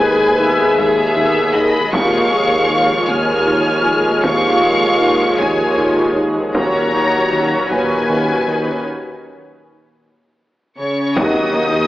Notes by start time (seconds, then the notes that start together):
Already playing: D#2 B2 G#3 G#4 B4 G#5
0.01 D#2 G#3 G#4
0.39 D#3 B3 E5
0.77 D#2 G#3 G#4 E5, taiko
1.16 D#3 B3 E5
1.54 D#3 G#3 G#4 D#5 B5
1.92 D#2 F3 G#3 F4 G#4 C#5 F5 C#6, taiko
2.31 D#2 G#3 G#4
2.69 D#3 F3 F4
3.08 D#2 G#3 G#4 G#5 F6, taiko
3.46 D#3 F3 F4
3.85 D#3 G#3 G#4
4.23 D#2 F3 F4 F5 C#6, taiko
4.62 D#2 G#3 G#4
5.00 D#3 F3 F4
5.39 D#2 G#3 G#4 C#5 G#5, taiko
5.78 D#3 F3 F4
6.16 D#3 G#3 G#4
6.54 D#2 A#2 F#3 C#4 F#4 C#5 A#5, taiko
6.93 D#2 A#3 D#4
7.32 D#3 C#4 F#4
7.70 D#2 C#4 D#4 B4 G#5, taiko
8.09 D#3 C#4 F#4
8.47 D#3 C#4 D#4
10.79 C#3 C#4 C#5 C#6
11.16 D#2 D#3 F#3 A#3 D#4 F#4 A#4 D#5 D#6, taiko, impact
11.56 D#2 A#3 D#4